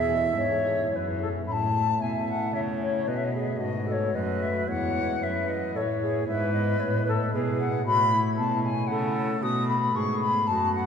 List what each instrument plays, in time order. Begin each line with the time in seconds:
Already playing: pipe organ E2 E4, cello E2, flute G#4 E5
0.07 pipe organ G#4
0.21 pipe organ E4
0.35 pipe organ G#2 B3, cello G#2, flute C#5
0.49 pipe organ E4
0.64 pipe organ G#4
0.77 pipe organ E4
0.90 pipe organ F#2 B3, cello F#2, flute C#5
0.95 flute B4
1.04 pipe organ E4
1.18 pipe organ G#4, flute A4
1.34 pipe organ E4
1.43 cello A2, pipe organ A3 C#4 E4
1.47 pipe organ A2, flute B5
1.52 flute A5
2.00 cello B2, pipe organ B2, flute E5 G#5
2.28 flute F#5
2.53 cello C#3, pipe organ C#3, flute C#5 E5
2.80 flute C#5
3.03 cello B2, pipe organ A3 F#4 B4
3.08 pipe organ B2, flute B4 D#5
3.16 flute E5
3.24 flute D#5
3.32 flute G#4 E5
3.39 flute D#5
3.47 flute E5
3.56 flute D#5
3.60 cello G#2, pipe organ G#2, flute F#4
3.87 flute A4 D#5
3.91 flute C#5
4.14 pipe organ F#2, cello F#2, flute B4 D#5
4.42 flute E5
4.64 pipe organ G#3 E4 B4, flute C#5 F#5
4.69 pipe organ E2, cello E2
5.22 cello F#2, pipe organ F#2, flute B4 E5
5.49 flute D#5
5.74 pipe organ A2, cello A2, flute A4 C#5
6.02 flute G#4
6.24 pipe organ B3 E4 B4
6.28 cello G#2, pipe organ G#2, flute B4 E5
6.53 flute D#5
6.80 cello A2, pipe organ A2, flute C#5
7.05 flute A4 B4
7.32 pipe organ B2, cello B2, flute G#4 B4
7.59 flute F#5
7.82 pipe organ A3 E4 C#5, flute F#4 B5
7.86 pipe organ A2, cello A2
8.13 flute E4
8.37 cello B2, pipe organ B2, flute A5
8.64 flute G#5
8.87 cello C#3, pipe organ C#3, flute A4 F#5
9.38 pipe organ A3 B3 B4
9.42 cello B2, pipe organ B2, flute F#4 D#6
9.68 flute B5
9.95 cello G#2, pipe organ G#2, flute G#4 C#6
10.20 flute B5
10.47 cello F#2, pipe organ F#2, flute F#4 A5
10.74 flute F#5